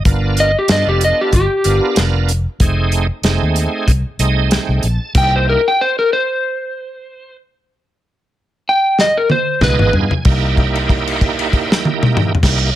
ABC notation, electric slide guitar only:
X:1
M:4/4
L:1/16
Q:"Swing 16ths" 1/4=94
K:F
V:1 name="Electric slide guitar"
z2 _e G e G e G G4 z4 | z16 | g c B g c B c8 z2 | z6 g2 ^d B c2 _c2 z2 |
z16 |]